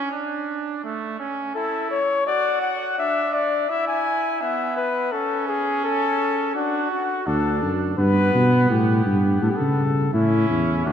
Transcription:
Already playing: C#4
0.12 D4
0.84 A3
1.20 C#4
1.55 E4 A4
1.91 C#5
2.27 F#4 D5
2.62 F#5
2.99 D4 E5
3.34 D5
3.70 E4 E5
3.88 G#5
4.41 B3 E5
4.77 B4
5.12 C#4 A4
5.48 G#4
5.85 A4
6.55 D4 F#4
6.92 F#4
7.26 D2 D4 A4
7.63 F#2
7.98 G2 B3 B4
8.35 B2
8.70 A2 G4
9.06 G2
9.42 A2 A4
9.50 G4
9.56 C#3 A4
10.14 A2 C#4 E4
10.50 E2
10.86 D2 D4 F#4

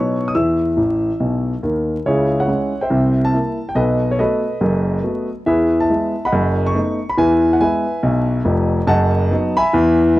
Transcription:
Already playing: B2 F#3 B3 D#4 C#5 C#6
0.28 D#6
0.35 E2 E3 E5 E6
0.77 A1 A2
1.20 B1 B2
1.63 D#2 D#3
2.06 C#2 C#3 E4 G#4 C#5
2.40 C#5 F#5
2.48 G#3 C#4 E4
2.81 C5 E5 G5
2.90 C2 C3
3.25 A5
3.33 A#3 E4
3.69 G5
3.75 B1 B2 A4 B4 D#5
4.11 C#5
4.19 A3 B3 F#4 A4 B4 D#5
4.61 F#1 F#2
5.03 A3 B3 F#4
5.46 E2 E3 G#4 B4 E5
5.80 E5 A5
5.90 G#3 B3 E4
6.25 D#5 F#5 B5
6.32 F#1 F#2
6.66 C#6
6.74 A3 B3 D#4
7.09 B5
7.17 E2 E3 B4 E5 G#5
7.53 F#5
7.60 G#3 B3 E4 B4 E5 G#5
8.03 B1 B2
8.45 F1 F2
8.87 F#1 F#2 D#5 F#5 A5
9.31 F#3 B3 D#4
9.57 E5 G#5 B5
9.73 E2 E3
10.16 G#3 B3

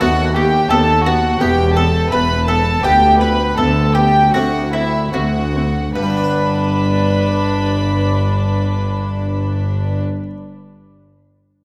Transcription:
0.01 D#2 A3 B3 F#4 F#5
0.34 B3 G4 G5
0.69 D#2 B3 A4 A5
1.04 B3 F#4 F#5
1.39 E1 E2 B3 E4 G4 G5
1.74 B3 A4 A5
2.10 E1 E2 B3 B4 B5
2.46 B3 A4 A5
2.83 D2 B3 G4 G5
3.19 B3 B4 B5
3.57 D2 B3 A4 A5
3.95 B3 G4 G5
4.32 D2 A3 C4 D4 F#4 F#5
4.72 C4 E4 E5
5.13 D2 C4 F#4 F#5
5.54 C4
5.95 G1 G2 D4 B4 B5
6.03 G3
6.10 B3
6.17 D4
6.24 B4

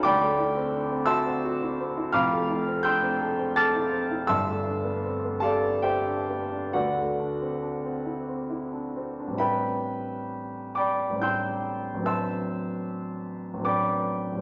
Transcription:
0.03 D2 D5 G5 B5 D6
0.21 A3
0.39 E4
0.56 C4
0.72 D4
0.90 C4
1.06 F#4 E5 A5 C6 E6
1.26 C4
1.45 F#4
1.62 E4
1.80 C4
1.98 E4
2.12 F1 F2 F5 B5 D6 F6
2.33 A3
2.50 E4
2.67 C4
2.83 D4 G5 C6 E6 G6
3.02 C4
3.21 A4
3.39 C4
3.56 A4 A5 D6 F6 A6
3.75 E4
3.92 C4
4.11 E4
4.27 G1 G2 E5 A5 C6 E6
4.47 A3
4.66 D4
4.84 B3
5.05 C4
5.24 B3
5.40 G4 A4 D5 F5 A5
5.63 B3
5.82 G4 C5 E5 G5
6.06 D4
6.29 B3
6.51 D4
6.73 D2 F#4 B4 D5 F#5
6.97 A3
7.20 D4
7.41 C4
7.63 D4
7.84 C4
8.06 E4
8.29 C4
8.50 E4
8.73 D4
8.96 C4
9.20 D4
9.27 A1 G3
9.32 C4 D4
9.37 E4 B4 E5 G5 B5
10.75 D5 G5 B5 D6
11.10 A1 G3
11.15 C4 D4
11.20 E4 G5 C6 E6 G6
11.94 A1 F#3
11.99 C4 D4
12.04 B4 E5 A5 C6 E6
13.53 A1 F#3
13.59 C4 D4
13.64 B4 D5 G5 B5 D6
14.32 A1 G3
14.38 C4

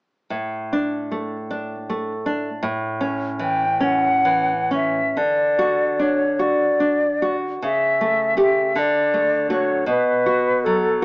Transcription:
0.30 A2
0.73 D4
1.11 A3
1.50 D4
1.90 A3
2.26 D4
2.63 A2
3.01 C#4
3.39 E3 G5
3.80 C#4 F#5
4.25 E3
4.71 C#4 E5
5.17 D3 D5
5.59 F#4
5.99 D4 C#5
6.39 F#4 D5
6.80 D4
7.22 F#4
7.62 C#3 E5
8.01 A3
8.37 A3 G4 E5
8.75 D3 D5
9.14 A3
9.50 A3 F#4 C#5
9.86 B2 B4
10.26 F#4
10.65 F#3 A4

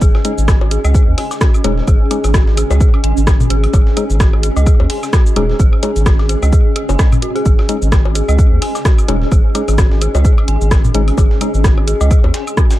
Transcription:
Already playing: C#4 G#4 D#5 G#5
0.01 G#1 G#4, kick, cabasa, shaker
0.15 snare, high bongo, low woodblock
0.25 G#3 C#4 D#4 G#4, closed hi-hat, cabasa, shaker
0.38 G#1, cabasa
0.48 F#4, kick, cross-stick, snare, cowbell, cabasa, low woodblock, shaker
0.61 high bongo
0.71 G#4, closed hi-hat, cabasa, shaker
0.84 C#2 D#5, cabasa, low woodblock
0.94 G#4, kick, cabasa, shaker
1.08 D#2
1.18 G#5, closed hi-hat, open hi-hat, high bongo, low woodblock
1.31 snare, cowbell, cabasa
1.41 F#4, kick, cross-stick, snare, cabasa, shaker
1.54 cabasa, low woodblock
1.64 D#1 G#3 C#4 D#4 G#4, closed hi-hat, high bongo, shaker
1.78 snare
1.87 G#1 G#4, kick, cabasa, low woodblock, shaker
2.11 G#3 C#4 D#4 G#4, closed hi-hat, cowbell, cabasa, shaker
2.24 G#1, closed hi-hat, high bongo, cabasa, low woodblock
2.34 F#4, kick, cross-stick, snare, cabasa, shaker
2.47 snare
2.57 G#4, closed hi-hat, cabasa, low woodblock, shaker
2.71 C#2 D#5, high bongo, cabasa
2.80 G#4, kick, cabasa, shaker
2.94 cowbell, low woodblock
3.04 G#1 G#5, closed hi-hat, shaker
3.17 G#1, cabasa
3.27 F#4, kick, cross-stick, snare, high bongo, cabasa, low woodblock, shaker
3.40 mid tom, cabasa
3.50 G#1 G#4, closed hi-hat, shaker
3.64 closed hi-hat, low woodblock
3.73 G#1 G#4, kick, cowbell, high bongo, cabasa, shaker
3.87 snare
3.97 G#3 C#4 D#4 G#4, closed hi-hat, cabasa, low woodblock, shaker
4.10 G#1, cabasa
4.20 F#4, kick, cross-stick, snare, cabasa, shaker
4.33 high bongo, low woodblock
4.43 G#4, closed hi-hat, cabasa, shaker
4.57 C#2 D#5, cowbell, cabasa
4.66 G#4, kick, cabasa, low woodblock, shaker
4.80 D#2, high bongo
4.90 G#5, closed hi-hat, open hi-hat
5.03 snare, cabasa, low woodblock
5.13 F#4, kick, cross-stick, snare, cabasa, shaker
5.26 cabasa
5.36 D#1 G#3 C#4 D#4 G#4, closed hi-hat, cowbell, high bongo, low woodblock, shaker
5.50 snare
5.59 G#1 G#4, kick, cabasa, shaker
5.73 low woodblock
5.83 G#3 C#4 D#4 G#4, closed hi-hat, high bongo, cabasa, shaker
5.96 G#1, closed hi-hat, cabasa
6.06 F#4, kick, cross-stick, snare, cabasa, low woodblock, shaker
6.19 snare, cowbell
6.29 G#4, closed hi-hat, cabasa, shaker
6.43 C#2 D#5, high bongo, cabasa, low woodblock
6.52 G#4, kick, cabasa, shaker
6.76 G#4, closed hi-hat, low woodblock, shaker
6.89 F#1 G#5, high bongo, cabasa
6.99 D#5, kick, cross-stick, snare, cowbell, cabasa, shaker
7.12 mid tom, cabasa, low woodblock
7.22 F#4, closed hi-hat, shaker
7.35 G#4, closed hi-hat
7.45 G#1 G#4, kick, cabasa, shaker
7.59 snare, high bongo, low woodblock
7.69 G#3 C#4 D#4 G#4, closed hi-hat, cabasa, shaker
7.82 G#1, cabasa
7.92 F#4, kick, cross-stick, snare, cowbell, cabasa, low woodblock, shaker
8.05 high bongo
8.15 G#4, closed hi-hat, cabasa, shaker
8.28 C#2 D#5, cabasa, low woodblock
8.38 G#4, kick, cabasa, shaker
8.52 D#2
8.62 G#5, closed hi-hat, open hi-hat, high bongo, low woodblock
8.75 snare, cowbell, cabasa
8.85 F#4, kick, cross-stick, snare, cabasa, shaker
8.98 cabasa, low woodblock
9.08 D#1 G#3 C#4 D#4 G#4, closed hi-hat, high bongo, shaker
9.22 snare
9.32 G#1 G#4, kick, cabasa, low woodblock, shaker
9.55 G#3 C#4 D#4 G#4, closed hi-hat, cowbell, cabasa, shaker
9.68 G#1, closed hi-hat, high bongo, cabasa, low woodblock
9.78 F#4, kick, cross-stick, snare, cabasa, shaker
9.91 snare
10.01 G#4, closed hi-hat, cabasa, low woodblock, shaker
10.15 C#2 D#5, high bongo, cabasa
10.25 G#4, kick, cabasa, shaker
10.38 cowbell, low woodblock
10.48 G#1 G#5, closed hi-hat, shaker
10.61 G#1, cabasa
10.71 F#4, kick, cross-stick, snare, high bongo, cabasa, low woodblock, shaker
10.85 mid tom, cabasa
10.94 G#1 G#3 C#4 D#4 G#4, closed hi-hat, shaker
11.08 closed hi-hat, low woodblock
11.18 G#1 G#4, kick, cowbell, high bongo, cabasa, shaker
11.31 snare
11.41 G#3 C#4 D#4 G#4, closed hi-hat, cabasa, low woodblock, shaker
11.54 G#1, cabasa
11.64 F#4, kick, cross-stick, snare, cabasa, shaker
11.78 high bongo, low woodblock
11.87 G#4, closed hi-hat, cabasa, shaker
12.01 C#2 D#5, cowbell, cabasa
12.11 G#4, kick, cabasa, low woodblock, shaker
12.24 D#2, high bongo
12.34 G#5, snare, closed hi-hat, shaker
12.47 cabasa, low woodblock
12.57 F#4, kick, cross-stick, cabasa, shaker
12.71 snare, cabasa, shaker

